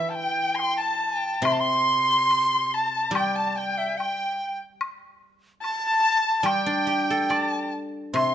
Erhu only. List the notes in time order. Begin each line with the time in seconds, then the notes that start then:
Already playing: E5
0.13 G5
0.55 C6
0.77 A5
1.43 C6
1.60 C6
2.73 A5
3.15 G5
3.35 A5
3.57 G5
3.97 G5
5.62 A5
6.40 A5
6.46 G5
7.31 A5
8.17 C6